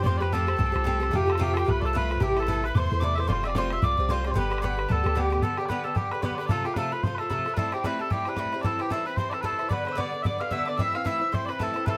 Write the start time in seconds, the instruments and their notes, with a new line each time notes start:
0.00 sub bass F2, bagpipes D5, tin whistle C6, bodhran
0.05 bouzouki A2 F3 C4 G4, mandolin C5, bagpipes C5, bodhran
0.17 bouzouki G4, bagpipes B4 D5, tin whistle B5
0.22 bouzouki F3 C4, mandolin B4, bodhran
0.32 bouzouki A2 F3 C4 G4, bagpipes A4, mandolin A4, tin whistle A5, bodhran
0.40 bodhran
0.47 bouzouki F3 C4 G4, tin whistle B5, bodhran
0.54 bouzouki A2, tin whistle A5
0.58 sub bass C2, bouzouki F3 C4 G4, bodhran
0.66 tin whistle G5
0.71 bouzouki C4 G4, tin whistle A5
0.75 sub bass C2, bouzouki F3, bodhran
0.84 bouzouki A2 F3 C4 G4, bodhran
1.00 bouzouki F3 C4 G4, bodhran
1.09 bouzouki C3 F3, bodhran
1.13 sub bass F2, bouzouki A3 F4, mandolin G4, bagpipes G4, tin whistle G5, bodhran
1.26 bouzouki F3 A3 F4, mandolin A4, tin whistle A5, bodhran
1.32 bagpipes A4, bodhran
1.38 bouzouki C3 F3 A3 F4, mandolin G4, tin whistle G5, bodhran
1.42 bagpipes G4
1.50 bouzouki F4, bagpipes A4, bodhran
1.55 bouzouki F3 A3, mandolin G4, bagpipes G4, tin whistle G5, bodhran
1.65 sub bass C2, bouzouki C3 F3 A3 F4, mandolin B4
1.69 bagpipes B4, tin whistle B5, bodhran
1.81 sub bass C2, bouzouki A3 F4, mandolin A4, bagpipes D5
1.85 bouzouki F3, bagpipes A4, tin whistle A5
1.93 bouzouki C3 F3 A3 F4, mandolin B4, bagpipes B4, tin whistle B5, bodhran
2.09 bouzouki F3 A3 F4, bodhran
2.16 bodhran
2.20 sub bass A1, bouzouki C3 E3 A3 E4, mandolin G4, bagpipes G4, tin whistle G5, bodhran
2.37 bouzouki E3 A3 E4, mandolin A4, bagpipes A4, tin whistle A5, bodhran
2.42 bodhran
2.47 bouzouki C3 E3 A3 E4, mandolin A4, bagpipes A4, tin whistle A5, bodhran
2.56 bodhran
2.62 bouzouki E3 A3 E4, bagpipes B4, mandolin B4, tin whistle B5, bodhran
2.75 sub bass E2, bouzouki C3 E3 A3 E4, mandolin C5, bagpipes C5, tin whistle D6, bodhran
2.80 tin whistle C6
2.91 sub bass E2, bouzouki E3 A3 E4
3.00 bouzouki C3 E3 A3 E4, mandolin D5, tin whistle D6, bodhran
3.05 bagpipes D5
3.15 bouzouki E3 A3 E4, mandolin C5, bagpipes E5, bodhran
3.20 bagpipes C5, bodhran
3.27 sub bass F1, bouzouki A2 G3 C4 F4, mandolin C5, bagpipes D5, tin whistle C6, bodhran
3.32 bagpipes C5
3.43 bouzouki G3 C4 F4, mandolin D5, bagpipes E5, bodhran
3.48 bagpipes D5, bodhran
3.55 bouzouki A2 G3 C4 F4, mandolin C5, bagpipes C5, tin whistle C6 D6, bodhran
3.63 bodhran
3.70 bouzouki G3 C4 F4, mandolin E5, bagpipes E5, bodhran
3.82 sub bass C2, bouzouki A2 G3 C4 F4, mandolin D5, bagpipes D5, tin whistle D6, bodhran
3.97 sub bass C2, bouzouki G3 C4 F4
4.09 bouzouki A2 G3 C4 F4, bagpipes C5, mandolin C5, tin whistle D6, bodhran
4.14 tin whistle C6
4.24 bouzouki G3 C4 F4, bagpipes D5, bodhran
4.31 bouzouki G2, bagpipes C5, bodhran
4.35 sub bass G1, bouzouki D3 B3 G4, mandolin B4, bagpipes B4, tin whistle B5, bodhran
4.50 bouzouki D3 B3 G4, bodhran
4.58 bouzouki G2, bagpipes D5, tin whistle B5, bodhran
4.63 bouzouki D3 B3 G4, mandolin B4, bagpipes B4, bodhran
4.71 bodhran
4.77 bouzouki D3 B3 G4, bodhran
4.88 sub bass D2, bouzouki G2 D3 B3 G4, mandolin A4, bagpipes A4, tin whistle A5, bodhran
5.04 sub bass D2, bouzouki D3 B3 G4, bodhran
5.14 bouzouki G2 D3 B3 G4, mandolin G4, tin whistle A5, bodhran
5.19 bagpipes G4, tin whistle G5
5.30 bouzouki D3 B3 G4, bodhran
5.37 bodhran
5.42 bouzouki G2 D3 B3 G4, bagpipes A4, tin whistle A5, bodhran
5.57 bouzouki B3 G4, bagpipes G4, tin whistle G5, bodhran
5.61 bouzouki D3
5.66 bouzouki G2, bagpipes B4 D5, tin whistle B5
5.70 bouzouki D3 B3 G4, bodhran
5.84 bouzouki D3 B3 G4, bagpipes A4, tin whistle A5
5.95 bouzouki G2 D3 B3 G4, bagpipes G4, tin whistle G5, bodhran
6.11 bouzouki D3 B3 G4, bagpipes B4, tin whistle B5, bodhran
6.22 bouzouki G2 D3 B3 G4, bagpipes B4 D5, tin whistle B5, bodhran
6.31 bagpipes D5, bodhran
6.38 bouzouki D3 B3 G4, bagpipes B4, tin whistle B5, bodhran
6.46 bouzouki C3, bagpipes D5, tin whistle A5, bodhran
6.50 bouzouki F3 A3 F4, bagpipes A4
6.64 bouzouki A3 F4, bagpipes G4, tin whistle G5, bodhran
6.68 bouzouki F3
6.74 bouzouki C3 F3 A3, bagpipes B4, tin whistle A5, bodhran
6.78 bouzouki F4, bagpipes A4
6.92 bouzouki F3 A3 F4, bagpipes B4, tin whistle B5
7.03 bouzouki C3 F3 A3 F4, bagpipes C5, tin whistle C6, bodhran
7.15 bouzouki F4, bagpipes A4 B4, bodhran
7.19 bouzouki F3 A3, tin whistle A5
7.29 bouzouki C3 F3 A3 F4, bagpipes A4, tin whistle B5, bodhran
7.33 tin whistle A5
7.38 bodhran
7.46 bouzouki F3 A3 F4, bodhran
7.54 bouzouki A2 G3 C4, bagpipes A4 B4, tin whistle A5, bodhran
7.59 bouzouki E4
7.72 bouzouki G3 C4 E4, bagpipes G4, tin whistle G5, bodhran
7.84 bouzouki A2 G3 C4 E4, bagpipes B4, tin whistle B5, bodhran
7.99 bouzouki G3 C4 E4, bagpipes A4, tin whistle A5
8.10 bouzouki A2 G3 C4 E4, bagpipes G4, tin whistle G5, bodhran
8.25 bouzouki G3 C4 E4, bagpipes B4, bodhran
8.36 bouzouki A2 G3 C4 E4, bagpipes B4, tin whistle B5 D6, bodhran
8.45 bodhran
8.52 bouzouki G3 C4 E4, bodhran
8.61 bouzouki G2 E3 C4, bagpipes A4 D5, tin whistle A5, bodhran
8.65 bouzouki E4
8.79 bouzouki E3 C4 E4, bagpipes G4, tin whistle G5, bodhran
8.90 bouzouki G2 E3 C4 E4, bagpipes A4, tin whistle A5, bodhran
9.06 bouzouki E3 C4 E4, bagpipes B4, tin whistle B5
9.17 bouzouki G2 E3 C4 E4, bagpipes C5, tin whistle C6, bodhran
9.29 bouzouki C4 E4, bagpipes A4 D5, tin whistle A5, bodhran
9.34 bouzouki E3
9.41 bouzouki G2 E3 C4 E4, bagpipes B4, tin whistle A5, bodhran
9.45 bagpipes A4
9.52 bodhran
9.59 bouzouki E3 C4 E4, bodhran
9.69 bouzouki G2 D3 B3 D4, mandolin B4, bagpipes D5, tin whistle B5, bodhran
9.73 bagpipes B4
9.85 bouzouki D3 B3 D4, mandolin C5, bodhran
9.92 bouzouki G2, tin whistle E6
9.97 bouzouki D3 B3 D4, mandolin D5, bagpipes D5, tin whistle D6, bodhran
10.12 bouzouki D3 B3 D4
10.23 bouzouki G2 D3 B3 D4, mandolin D5, bagpipes D5 E5, tin whistle D6, bodhran
10.38 bouzouki D3 B3 D4, mandolin F5, bagpipes F5, tin whistle F6, bodhran
10.50 bouzouki G2 D3 B3 D4, bagpipes E5, mandolin E5, tin whistle E6, bodhran
10.60 bodhran
10.65 bouzouki D3 B3 D4, bagpipes D5, tin whistle D6, bodhran
10.77 bouzouki A2 E3 C4 E4, tin whistle E6, bodhran
10.81 mandolin E5, bagpipes E5
10.93 bouzouki E3 C4 E4, mandolin F5, bagpipes F5, bodhran
11.04 bouzouki A2 E3 C4 E4, mandolin E5, bagpipes E5, tin whistle E6, bodhran
11.20 bouzouki E3 C4 E4
11.32 bouzouki A2 E3 C4 E4, mandolin C5, bagpipes C5, tin whistle C6, bodhran
11.45 bouzouki E4, mandolin B4, bagpipes D5, tin whistle B5, bodhran
11.50 bouzouki E3 C4, bagpipes B4
11.59 bouzouki A2 E3 C4 E4, mandolin A4, bagpipes A4, tin whistle A5, bodhran
11.67 bodhran
11.74 bouzouki E3 C4 E4, bodhran
11.86 bouzouki G2 E3 C4 E4, mandolin A4, bagpipes B4, tin whistle A5, bodhran
11.90 bagpipes A4